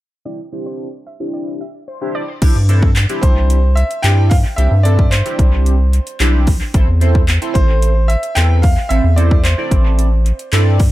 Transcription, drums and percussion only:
2.42 kick loud
2.42 closed hi-hat medium
2.42 crash medium
2.69 closed hi-hat medium
2.83 kick medium
2.96 clap loud
2.96 closed hi-hat medium
3.09 closed hi-hat medium
3.23 kick medium
3.23 closed hi-hat medium
3.50 closed hi-hat medium
3.77 closed hi-hat medium
3.91 closed hi-hat medium
4.04 clap loud
4.04 closed hi-hat medium
4.31 kick loud
4.31 open hi-hat medium
4.58 closed hi-hat loud
4.85 closed hi-hat medium
4.99 kick medium
5.12 clap loud
5.12 closed hi-hat medium
5.26 closed hi-hat medium
5.39 kick medium
5.39 closed hi-hat medium
5.66 closed hi-hat medium
5.93 closed hi-hat medium
6.07 closed hi-hat medium
6.20 clap loud
6.20 closed hi-hat medium
6.47 kick loud
6.47 open hi-hat medium
6.74 kick loud
6.74 closed hi-hat medium
7.01 closed hi-hat medium
7.15 kick medium
7.28 clap loud
7.28 closed hi-hat medium
7.42 closed hi-hat medium
7.55 kick medium
7.55 closed hi-hat medium
7.82 closed hi-hat medium
8.10 closed hi-hat medium
8.23 closed hi-hat medium
8.37 clap loud
8.37 closed hi-hat loud
8.63 kick loud
8.63 open hi-hat medium
8.91 closed hi-hat medium
9.18 closed hi-hat medium
9.31 kick medium
9.45 clap loud
9.45 closed hi-hat medium
9.71 kick medium
9.71 closed hi-hat medium
9.99 closed hi-hat medium
10.26 closed hi-hat medium
10.39 closed hi-hat medium
10.53 clap loud
10.53 closed hi-hat medium
10.79 kick loud
10.79 open hi-hat medium

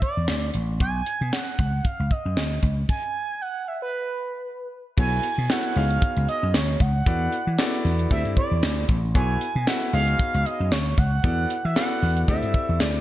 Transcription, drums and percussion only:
0.02 kick medium
0.02 closed hi-hat medium
0.28 snare loud
0.28 clap medium
0.28 closed hi-hat medium
0.54 closed hi-hat medium
0.80 kick loud
0.80 closed hi-hat medium
1.06 closed hi-hat medium
1.33 snare loud
1.33 clap medium
1.33 closed hi-hat medium
1.59 kick medium
1.59 closed hi-hat medium
1.85 kick loud
1.85 closed hi-hat medium
2.11 kick medium
2.11 closed hi-hat medium
2.37 snare loud
2.37 clap medium
2.37 closed hi-hat medium
2.63 kick medium
2.63 closed hi-hat medium
2.89 kick loud
2.89 crash medium
4.98 kick loud
4.98 crash loud
5.23 closed hi-hat medium
5.50 snare loud
5.50 clap medium
5.50 closed hi-hat medium
5.76 open hi-hat medium
5.90 closed hi-hat medium
6.02 kick loud
6.02 closed hi-hat medium
6.17 closed hi-hat medium
6.29 closed hi-hat medium
6.54 snare loud
6.54 clap loud
6.54 closed hi-hat medium
6.80 kick medium
6.80 closed hi-hat medium
7.06 kick loud
7.06 closed hi-hat loud
7.32 closed hi-hat medium
7.59 snare loud
7.59 clap medium
7.59 closed hi-hat medium
7.85 open hi-hat medium
7.99 closed hi-hat medium
8.11 kick loud
8.11 closed hi-hat medium
8.25 closed hi-hat medium
8.37 kick medium
8.37 closed hi-hat medium
8.63 snare loud
8.63 clap loud
8.63 closed hi-hat medium
8.89 kick medium
8.89 closed hi-hat medium
9.15 kick loud
9.15 closed hi-hat medium
9.41 closed hi-hat medium
9.67 snare loud
9.67 clap medium
9.67 closed hi-hat medium
9.93 open hi-hat medium
10.08 closed hi-hat medium
10.20 kick loud
10.20 closed hi-hat loud
10.34 closed hi-hat medium
10.46 closed hi-hat medium
10.72 snare loud
10.72 clap medium
10.72 closed hi-hat medium
10.98 kick medium
10.98 closed hi-hat medium
11.24 kick loud
11.24 closed hi-hat loud
11.50 closed hi-hat medium
11.76 snare loud
11.76 clap medium
11.76 closed hi-hat medium
12.02 open hi-hat medium
12.17 closed hi-hat medium
12.28 kick loud
12.28 closed hi-hat loud
12.43 closed hi-hat medium
12.54 kick medium
12.54 closed hi-hat medium
12.80 snare loud
12.80 clap loud
12.80 closed hi-hat medium

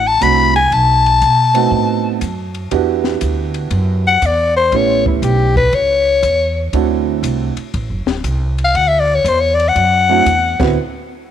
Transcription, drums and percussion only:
0.21 kick soft
0.21 hi-hat pedal medium
0.21 ride medium
0.56 ride soft
0.72 kick soft
0.72 ride medium
1.06 ride soft
1.22 kick soft
1.22 hi-hat pedal medium
1.22 ride medium
1.55 ride medium
1.72 kick soft
2.21 kick soft
2.21 hi-hat pedal medium
2.21 ride medium
2.54 ride soft
2.71 kick soft
2.71 ride medium
3.04 snare soft
3.21 kick soft
3.21 hi-hat pedal medium
3.21 ride medium
3.54 ride medium
3.71 kick soft
3.71 ride medium
4.22 kick soft
4.22 hi-hat pedal medium
4.22 ride medium
4.72 kick soft
4.72 ride medium
5.06 kick medium
5.22 kick soft
5.22 hi-hat pedal medium
5.22 ride medium
5.56 kick medium
5.56 ride medium
5.73 kick soft
5.73 ride medium
6.23 kick soft
6.23 hi-hat pedal medium
6.23 ride medium
6.73 kick soft
6.73 ride medium
7.24 kick soft
7.24 hi-hat pedal medium
7.24 ride medium
7.57 ride medium
7.74 kick soft
7.74 ride medium
8.07 snare medium
8.24 kick soft
8.24 hi-hat pedal medium
8.24 ride medium
8.58 ride soft
8.75 kick soft
8.75 ride medium
9.25 kick soft
9.25 hi-hat pedal medium
9.25 ride medium
9.60 ride medium
9.76 kick soft
9.76 ride medium
10.26 kick soft
10.26 hi-hat pedal medium
10.26 ride medium
10.60 kick loud
10.60 snare medium
10.60 crash medium

